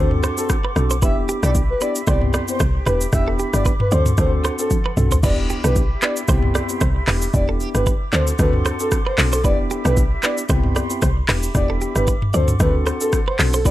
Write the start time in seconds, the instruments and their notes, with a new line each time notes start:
Already playing: log drum bass D2, tine electric piano C4 D4 F#4 A4, flute section A4 F#5 C6 D6
0.11 mid tom
0.23 clean electric guitar C5, cross-stick, shaker
0.37 tine electric piano C4 D4 F#4 A4, soft synth lead A4, shaker
0.50 kick, cross-stick, shaker
0.65 clean electric guitar B4
0.76 log drum bass B1, tine electric piano C4 D4 F#4 A4, cross-stick, shaker
0.90 clean electric guitar C5, shaker
1.02 log drum bass E1, tine electric piano B3 D4 E4 G4, flute section G4 E5 B5, clean electric guitar B4, soft synth lead E5, kick, shaker
1.29 clean electric guitar G4, shaker
1.43 log drum bass B1, tine electric piano B3 D4 E4 G4, clean electric guitar A4, soft synth lead D5, cross-stick, shaker
1.55 kick, shaker
1.70 soft synth lead B4
1.81 tine electric piano B3 D4 E4 G4, clean electric guitar B4, soft synth lead D5, shaker
1.96 shaker
2.07 log drum bass C2, tine electric piano B3 C4 E4 G4, flute section G4 C6, clean electric guitar C5, soft synth lead D5, kick, cross-stick, shaker
2.21 mid tom
2.34 clean electric guitar D5, cross-stick, shaker
2.48 tine electric piano B3 C4 E4 G4, soft synth lead C5, shaker
2.60 log drum bass C2, clean electric guitar C5, kick, cross-stick, shaker
2.86 log drum bass E1, tine electric piano B3 D4 E4 G4, clean electric guitar B4, soft synth lead B4, flute section E5 B5 D6, cross-stick, shaker
3.01 shaker
3.13 log drum bass E1, tine electric piano B3 D4 E4 G4, soft synth lead E5, kick, cross-stick, shaker
3.28 clean electric guitar A4
3.39 clean electric guitar G4, shaker
3.53 log drum bass G1, tine electric piano B3 D4 E4 G4, soft synth lead D5, cross-stick, shaker
3.65 clean electric guitar B4, kick, shaker
3.80 soft synth lead B4, mid tom
3.91 log drum bass D2, tine electric piano C4 D4 F#4 A4, flute section A4 F#5 C6, soft synth lead C5, clean electric guitar D5, shaker
4.06 mid tom, shaker
4.18 log drum bass D2, tine electric piano C4 D4 F#4 A4, soft synth lead C5, kick, cross-stick, shaker
4.44 clean electric guitar C5, cross-stick, shaker
4.59 tine electric piano C4 D4 F#4 A4, soft synth lead A4, shaker
4.71 kick, high tom, shaker
4.86 clean electric guitar B4
4.97 log drum bass B1, tine electric piano C4 D4 F#4 A4, mid tom, shaker
5.11 clean electric guitar C5, floor tom, shaker
5.23 log drum bass E1, tine electric piano B3 D4 E4 G4, flute section G4 E5 B5 D6, clean electric guitar B4, soft synth lead D5, kick, crash, shaker
5.50 clean electric guitar G4, shaker
5.64 log drum bass B1, tine electric piano B3 D4 E4 G4, clean electric guitar A4, soft synth lead B4, cross-stick, shaker
5.76 kick, shaker
6.02 tine electric piano B3 D4 E4 G4, clean electric guitar B4, soft synth lead D5, clap, shaker
6.17 shaker
6.28 log drum bass C2, tine electric piano B3 C4 E4 G4, clean electric guitar C5, flute section C6, kick, cross-stick, shaker
6.43 mid tom
6.55 clean electric guitar D5, cross-stick, shaker
6.69 tine electric piano B3 C4 E4 G4, shaker
6.81 log drum bass C2, clean electric guitar C5, kick, cross-stick, shaker
7.07 log drum bass E1, tine electric piano B3 D4 E4 G4, clean electric guitar B4, flute section D6, cross-stick, clap, open hi-hat, shaker
7.22 shaker
7.34 log drum bass E1, tine electric piano B3 D4 E4 G4, soft synth lead D5, kick, shaker
7.49 clean electric guitar A4
7.60 clean electric guitar G4, shaker
7.74 log drum bass G1, tine electric piano B3 D4 E4 G4, soft synth lead B4, cross-stick, shaker
7.87 clean electric guitar B4, kick, shaker
8.13 log drum bass D2, tine electric piano C4 D4 F#4 A4, flute section A4 F#5 C6, soft synth lead C5, clean electric guitar D5, clap, shaker
8.27 shaker
8.39 log drum bass D2, tine electric piano C4 D4 F#4 A4, soft synth lead B4, kick, cross-stick, shaker
8.53 mid tom
8.66 clean electric guitar C5, cross-stick, shaker
8.80 tine electric piano C4 D4 F#4 A4, soft synth lead A4, shaker
8.92 kick, cross-stick, shaker
9.07 clean electric guitar B4, soft synth lead C5
9.18 log drum bass B1, tine electric piano C4 D4 F#4 A4, cross-stick, clap, open hi-hat, shaker
9.33 soft synth lead A4, clean electric guitar C5, shaker
9.44 log drum bass E1, tine electric piano B3 D4 E4 G4, flute section G4 E5 B5, clean electric guitar B4, soft synth lead D5, kick, shaker
9.71 clean electric guitar G4, shaker
9.85 log drum bass B1, tine electric piano B3 D4 E4 G4, clean electric guitar A4, soft synth lead B4, cross-stick, shaker
9.97 kick, shaker
10.23 tine electric piano B3 D4 E4 G4, clean electric guitar B4, soft synth lead D5, clap, shaker
10.38 shaker
10.49 log drum bass C2, tine electric piano B3 C4 E4 G4, flute section G4 B5 C6, clean electric guitar C5, kick, cross-stick, shaker
10.64 mid tom
10.76 clean electric guitar D5, cross-stick, shaker
10.90 tine electric piano B3 C4 E4 G4, shaker
11.02 log drum bass C2, clean electric guitar C5, kick, cross-stick, shaker
11.28 log drum bass E1, tine electric piano B3 D4 E4 G4, flute section G4 E5 B5 D6, clean electric guitar B4, cross-stick, clap, open hi-hat, shaker
11.43 shaker
11.54 log drum bass E1, tine electric piano B3 D4 E4 G4, soft synth lead D5, kick, cross-stick, shaker
11.70 clean electric guitar A4
11.81 clean electric guitar G4, shaker
11.95 log drum bass G1, tine electric piano B3 D4 E4 G4, soft synth lead B4, cross-stick, shaker
12.07 clean electric guitar B4, kick, shaker
12.22 mid tom
12.33 log drum bass D2, tine electric piano C4 D4 F#4 A4, flute section A4 F#5 C6, soft synth lead C5, clean electric guitar D5, shaker
12.48 mid tom, shaker
12.60 log drum bass D2, tine electric piano C4 D4 F#4 A4, soft synth lead B4, kick, cross-stick, shaker
12.87 clean electric guitar C5, cross-stick, shaker
13.01 tine electric piano C4 D4 F#4 A4, soft synth lead A4, shaker
13.13 kick, cross-stick, shaker
13.28 clean electric guitar B4, soft synth lead C5
13.39 log drum bass B1, tine electric piano C4 D4 F#4 A4, cross-stick, clap, open hi-hat, shaker
13.54 soft synth lead A4, clean electric guitar C5, shaker
13.65 log drum bass E1, tine electric piano B3 D4 E4 G4, flute section G4 E5 B5 D6, clean electric guitar B4, soft synth lead D5, kick, shaker